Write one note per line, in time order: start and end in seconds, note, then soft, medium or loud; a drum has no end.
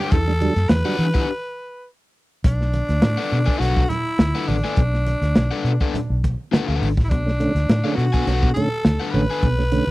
0.00 0.21 B3 medium
0.00 0.14 D4 medium
0.00 0.13 G4 loud
0.00 0.14 G4 medium
0.00 0.21 G4 loud
0.00 0.14 B4 medium
0.00 0.21 D5 loud
0.00 0.14 G5 medium
0.11 0.48 E2 loud
0.11 0.25 E3 medium
0.11 0.71 A4 loud
0.11 kick loud
0.11 closed hi-hat medium
0.11 muted conga soft
0.27 0.33 G3 soft
0.27 0.33 D4 soft
0.27 snare soft
0.41 0.54 F#3 medium
0.41 0.54 G3 medium
0.41 0.54 D4 medium
0.41 closed hi-hat medium
0.41 muted conga medium
0.56 0.67 F#2 loud
0.56 snare soft
0.56 closed hi-hat medium
0.69 0.82 E2 loud
0.69 1.86 B4 loud
0.69 snare loud
0.69 closed hi-hat medium
0.69 high conga medium
0.85 0.96 F#3 medium
0.85 0.97 G3 medium
0.85 0.97 D4 medium
0.85 1.06 D4 medium
0.85 1.06 G4 medium
0.85 1.05 B4 medium
0.85 1.05 F#5 medium
0.99 1.11 E3 loud
0.99 closed hi-hat medium
1.14 1.26 E3 medium
1.14 1.29 D4 medium
1.14 1.28 G4 medium
1.14 1.28 B4 medium
1.14 1.28 F#5 medium
1.14 kick loud
1.14 closed hi-hat soft
2.44 2.81 B1 loud
2.44 3.60 D4 loud
2.44 kick loud
2.44 closed hi-hat loud
2.61 snare soft
2.73 closed hi-hat medium
2.73 muted conga medium
2.89 3.00 D2 medium
2.89 snare soft
2.89 closed hi-hat soft
3.02 3.15 A2 medium
3.02 snare loud
3.02 closed hi-hat medium
3.02 high conga medium
3.17 3.38 D4 medium
3.17 3.38 A4 medium
3.17 3.38 B4 medium
3.17 3.38 F#5 medium
3.32 3.45 B2 loud
3.32 open hi-hat medium
3.46 3.58 D4 medium
3.46 3.59 A4 medium
3.46 3.60 B4 medium
3.46 3.61 G#5 medium
3.46 kick medium
3.59 3.84 B1 medium
3.59 3.81 D4 medium
3.59 3.91 F#4 loud
3.59 3.82 A4 medium
3.59 3.82 B4 medium
3.59 3.82 F#5 medium
3.59 closed hi-hat medium
3.77 kick medium
3.89 4.50 E4 loud
3.89 closed hi-hat medium
3.89 muted conga soft
3.89 low conga medium
4.19 4.31 D2 loud
4.19 snare loud
4.19 closed hi-hat loud
4.19 high conga medium
4.35 4.55 D4 medium
4.35 4.55 A4 medium
4.35 4.55 B4 medium
4.35 4.55 F#5 medium
4.35 snare soft
4.48 4.61 A1 medium
4.48 6.23 D4 loud
4.48 open hi-hat medium
4.48 high conga medium
4.64 4.79 D4 medium
4.64 4.79 A4 medium
4.64 4.79 B4 medium
4.64 4.79 G#5 medium
4.64 snare soft
4.76 5.13 B1 loud
4.76 kick loud
4.76 closed hi-hat medium
4.76 muted conga soft
4.94 snare soft
5.07 closed hi-hat medium
5.07 muted conga medium
5.22 5.33 D2 medium
5.22 snare soft
5.22 closed hi-hat medium
5.35 5.48 B1 medium
5.35 snare loud
5.35 closed hi-hat medium
5.35 high conga medium
5.51 5.71 D4 medium
5.51 5.71 A4 medium
5.51 5.71 B4 medium
5.51 5.71 F#5 medium
5.64 5.77 B2 loud
5.64 closed hi-hat medium
5.80 5.96 D4 medium
5.80 5.96 A4 medium
5.80 5.96 B4 medium
5.80 5.96 F#5 medium
5.80 kick medium
5.80 closed hi-hat soft
5.94 muted fingered electric bass stroke soft
5.94 closed hi-hat medium
5.94 low conga medium
6.10 6.33 B1 medium
6.24 kick medium
6.24 closed hi-hat medium
6.24 muted conga medium
6.52 6.68 D4 medium
6.52 6.67 A4 medium
6.52 6.67 B4 medium
6.52 6.67 F#5 medium
6.52 snare loud
6.52 closed hi-hat loud
6.52 high conga medium
6.68 6.79 D2 medium
6.68 6.88 D4 medium
6.68 6.88 A4 medium
6.68 6.87 B4 medium
6.68 6.87 F#5 medium
6.68 snare soft
6.82 6.97 G#1 loud
6.82 open hi-hat medium
6.82 high conga medium
6.97 7.11 A1 medium
6.97 kick loud
6.97 snare soft
7.05 7.11 E4 medium
7.09 7.47 B1 loud
7.09 7.23 B2 medium
7.09 7.97 D4 medium
7.09 kick loud
7.09 closed hi-hat medium
7.09 muted conga soft
7.26 7.32 A3 soft
7.26 7.31 C#4 soft
7.26 snare soft
7.40 7.52 D3 medium
7.40 7.52 A3 medium
7.40 7.53 C#4 medium
7.40 closed hi-hat medium
7.40 muted conga medium
7.55 7.66 D2 medium
7.55 snare soft
7.55 closed hi-hat medium
7.69 7.81 A2 medium
7.69 snare loud
7.69 closed hi-hat medium
7.69 high conga medium
7.84 7.95 D3 medium
7.84 7.95 A3 medium
7.84 7.95 C#4 medium
7.84 8.04 D4 medium
7.84 8.04 A4 medium
7.84 8.04 B4 medium
7.84 8.04 F#5 medium
7.95 8.10 B2 loud
7.95 8.53 F#4 loud
7.95 closed hi-hat medium
8.13 8.24 B2 medium
8.13 8.25 D4 medium
8.13 8.26 A4 medium
8.13 8.27 B4 medium
8.13 8.28 G#5 medium
8.13 kick medium
8.13 closed hi-hat soft
8.27 8.50 B1 medium
8.27 8.33 A3 soft
8.27 8.33 C#4 soft
8.27 8.47 D4 medium
8.27 8.48 A4 loud
8.27 8.48 B4 medium
8.27 8.48 F#5 loud
8.27 closed hi-hat medium
8.43 8.54 B2 medium
8.43 kick loud
8.54 8.68 D3 medium
8.54 8.69 A3 medium
8.54 8.69 C#4 medium
8.54 9.13 A4 loud
8.54 closed hi-hat medium
8.54 muted conga medium
8.54 low conga medium
8.85 8.97 D2 medium
8.85 snare loud
8.85 closed hi-hat loud
8.85 high conga medium
9.00 9.21 D4 medium
9.00 9.20 A4 medium
9.00 9.20 B4 medium
9.00 9.20 F#5 medium
9.00 snare soft
9.12 9.26 A1 medium
9.12 9.26 D3 medium
9.12 9.27 A3 medium
9.12 9.27 C#4 loud
9.12 9.91 B4 loud
9.12 open hi-hat medium
9.12 high conga medium
9.30 9.45 D4 soft
9.30 9.45 A4 medium
9.30 9.45 B4 medium
9.30 9.45 G#5 medium
9.42 9.79 B1 loud
9.42 9.56 B2 medium
9.42 kick loud
9.42 closed hi-hat medium
9.42 muted conga soft
9.58 9.64 A3 soft
9.58 9.64 C#4 soft
9.58 snare soft
9.72 9.84 D3 medium
9.72 9.85 A3 medium
9.72 9.85 C#4 medium
9.72 closed hi-hat medium
9.72 muted conga medium
9.87 9.91 D2 medium
9.87 snare soft